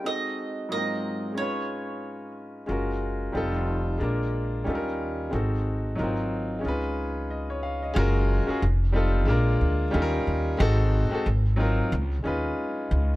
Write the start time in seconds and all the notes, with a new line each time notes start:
0.03 G#3 C4 D#4 F#4 D#5
0.07 A4
0.69 G#2 F#3 A#3 D#4 F4 D#5
0.73 C4 A#4
1.32 G#3 C#4
1.37 D#4 F4 C#5
1.41 B4
2.66 F#1 G#3 C#4 F4 F#4
2.71 A#4
3.32 F1 G3 C4 D#4 F4
3.37 A4
3.98 A#1 G#3 A#3 D4 F4
4.03 A#4
4.64 D#2 G3 C#4 D#4 F4
4.69 A4
4.75 A#4
5.30 G#1 G#3 C4 D#4 F#4
5.35 A4
5.95 G#1 F#3 A#3 D#4 F4
6.00 C4 A#4
6.59 G#3 C#4
6.64 C#2 D#4 F4
6.68 B4
7.30 D#5
7.50 C#5
7.63 F5
7.82 D#5
7.94 F#1 G#3 C#4 F4 F#4
7.99 A#4
8.46 G#3 C#4 F4 F#4, muted upright bass stroke
8.50 G#4
8.62 F1
8.92 G3 C4 D#4 F4
8.97 A4
9.25 A#1 G#3 A#3 D4 F4
9.30 A#4
9.61 D2
9.91 D#2 G3 C#4 D#4 F4
9.96 A4
10.02 A#4
10.27 D#2
10.57 G#1 G#3 C4 D#4 F#4
10.62 A4
11.10 G#3 C4 D#4 F#4, muted upright bass stroke
11.14 A4
11.26 G#1
11.56 F#3 C4 D#4 F4
11.61 A#4
11.92 C#2
12.22 D#2 G#3 C#4 D#4 F4
12.27 B4
12.91 C#2